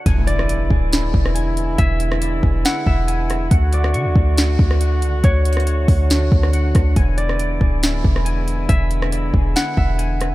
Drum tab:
HH |x-----x-----x-----------x-----------x-----x-----|x-----x-----x-----------x-----------x-----x-----|x-----x-----x-----------x-----------x-----x-----|x-----x-x-x-x-----o-----x-----------x-----x-----|
SD |---------r--------------o--------r--------------|---------r--------------o-----------------r-----|---------r--------------o--------r--------------|---------r--------------o--------r--------r-----|
BD |o-----------------o-----------o-----------------|o-----------------o-----------o-----------------|o-----------------o-----------o-----------------|o-----------------o-----------o-----------o-----|

HH |x-----x-----x-----------x-----------x-----x-----|x-----x-----x-----------x-----------x-----x-----|
SD |---------r--------------o--------r--------------|---------r--------------o-----------------r-----|
BD |o-----------------o-----------o-----------------|o-----------------o-----------o-----------------|